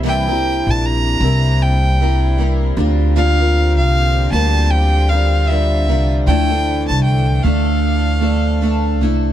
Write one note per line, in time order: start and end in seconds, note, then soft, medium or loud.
0.00 0.63 C2 medium
0.00 2.73 C3 medium
0.00 0.27 C3 medium
0.00 0.27 E3 medium
0.00 2.73 G3 medium
0.00 0.28 G3 medium
0.00 6.23 A#3 medium
0.00 2.73 D4 medium
0.04 0.28 C4 medium
0.04 0.28 E4 medium
0.04 0.27 A#4 medium
0.04 0.72 G5 loud
0.28 1.21 G3 soft
0.28 1.21 C4 soft
0.28 1.22 E4 medium
0.28 1.23 A#4 medium
0.67 1.17 A#1 medium
0.67 0.87 A5 loud
0.85 1.63 A#5 loud
1.20 2.73 C2 loud
1.20 1.99 G3 medium
1.20 1.99 C4 medium
1.20 2.00 E4 medium
1.20 2.01 A#4 medium
1.62 2.39 G5 loud
2.00 2.36 G3 medium
2.00 2.37 C4 medium
2.00 2.38 E4 medium
2.00 2.38 A#4 medium
2.38 2.75 G3 medium
2.38 2.77 C4 medium
2.38 2.77 E4 medium
2.38 2.77 A#4 medium
2.77 3.78 D2 loud
2.77 9.33 D3 medium
2.77 9.33 F3 medium
2.77 3.15 G3 medium
2.77 6.24 C4 medium
2.77 3.15 D4 medium
2.77 3.16 F4 medium
2.77 6.24 G4 medium
2.77 3.16 A#4 medium
3.16 3.39 D3 medium
3.16 3.39 G3 medium
3.16 3.40 D4 medium
3.16 3.40 F4 medium
3.16 3.39 A#4 loud
3.16 3.74 F5 loud
3.40 4.33 D4 soft
3.40 4.33 F4 medium
3.40 4.33 A#4 medium
3.77 4.29 C2 loud
3.77 4.28 F5 loud
4.32 5.88 D2 loud
4.32 5.09 G3 medium
4.32 5.11 D4 medium
4.32 5.12 F4 medium
4.32 5.11 A#4 medium
4.32 4.72 A5 loud
4.70 5.10 G5 loud
5.09 5.48 G3 medium
5.09 5.49 D4 medium
5.09 5.49 F4 medium
5.09 5.50 A#4 medium
5.09 5.48 F5 medium
5.47 5.87 G3 medium
5.47 5.88 D4 medium
5.47 5.88 F4 medium
5.47 6.10 E5 medium
5.51 5.88 A#4 medium
5.88 6.24 C2 medium
5.88 6.27 G3 medium
5.88 6.26 D4 medium
5.88 6.27 F4 medium
5.88 6.28 A#4 medium
6.27 6.85 D2 loud
6.27 6.50 D3 medium
6.27 9.33 E3 medium
6.27 6.50 F3 medium
6.27 6.51 A3 medium
6.27 6.51 D4 medium
6.27 9.33 D4 medium
6.27 6.50 E4 medium
6.27 9.33 A4 medium
6.27 6.49 A4 medium
6.27 6.85 G5 loud
6.50 7.43 A3 medium
6.50 7.44 D4 medium
6.50 7.44 E4 medium
6.50 7.45 A4 medium
6.88 7.40 C2 medium
6.88 7.03 A5 medium
7.03 7.44 G5 medium
7.43 8.99 D2 loud
7.43 8.20 A3 medium
7.43 8.21 D4 medium
7.43 8.22 A4 medium
7.43 8.99 F5 medium
8.20 8.60 A3 soft
8.20 8.60 D4 medium
8.20 8.61 A4 medium
8.61 9.00 A3 medium
8.61 9.00 D4 medium
8.61 9.01 A4 medium
8.99 9.33 C2 medium
8.99 9.33 A3 medium
8.99 9.33 D4 medium
8.99 9.33 E4 medium
8.99 9.33 A4 medium